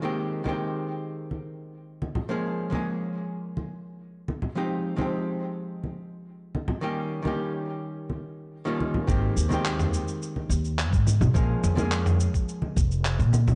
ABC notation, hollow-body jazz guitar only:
X:1
M:4/4
L:1/16
Q:1/4=106
K:Bbdor
V:1 name="Hollow-body jazz guitar"
[E,A,B,CG]3 [E,A,B,CG]12- [E,A,B,CG] | [F,A,B,DA]3 [F,A,B,DA]12- [F,A,B,DA] | [F,A,CEG]3 [F,A,CEG]12- [F,A,CEG] | [E,G,B,DG]3 [E,G,B,DG]8- [E,G,B,DG]2 [E,G,B,DF]3 |
[E,A,B,CG]3 [E,A,B,CG]12- [E,A,B,CG] | [F,A,B,DA]3 [F,A,B,DA]12- [F,A,B,DA] |]